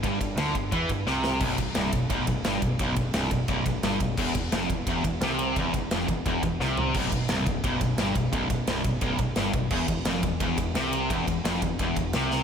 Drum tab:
CC |--------|x-------|--------|x-------|
RD |xxxxxx--|-xxxxxxx|xxxxxxxx|-xxxxxxx|
SD |--o---oo|--o---o-|--o---o-|--o---o-|
FT |--------|--------|--------|--------|
BD |oo-ooo--|oo-ooo-o|oo-ooo-o|oo-ooo--|

CC |--------|x-------|--------|x-------|
RD |xxxxxx--|-xxxxxxx|xxxxxxxx|-xxxxxxx|
SD |--o---o-|--o---o-|--o---o-|--o---o-|
FT |-------o|--------|--------|--------|
BD |oo-ooo--|oo-ooo-o|oo-ooo-o|oo-ooo--|

CC |--------|
RD |xxxxxxx-|
SD |--o---oo|
FT |--------|
BD |oo-ooo--|